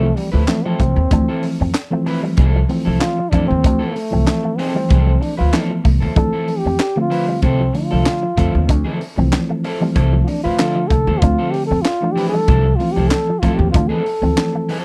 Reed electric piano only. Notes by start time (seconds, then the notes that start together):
Already playing: E3 F3 A3 C4
0.46 E3 F3 A3 C4
1.10 E3 F3 A3 C4
1.90 E3 F3 A3 C4
2.68 E3 F3 A3 C4
3.32 E3 F3 A3 C4
4.11 E3 F3 A3 C4
4.74 E3 F3 A3 C4
5.52 E3 F3 A3 B3
6.16 E3 F3 A3 C4
6.96 D3 F3 A3 C4
7.74 D3 F3 A3 D4
8.38 D3 F3 A3 C4
9.17 E3 F3 A3 C4
9.80 E3 F3 A3 C4
10.59 D3 F3 A3 D4
11.21 D3 F3 A3 C4
12.01 E3 F3 A3 D4
12.79 E3 F3 A3 C4
13.42 E3 F3 A3 C4
14.21 E3 F3 A3 C4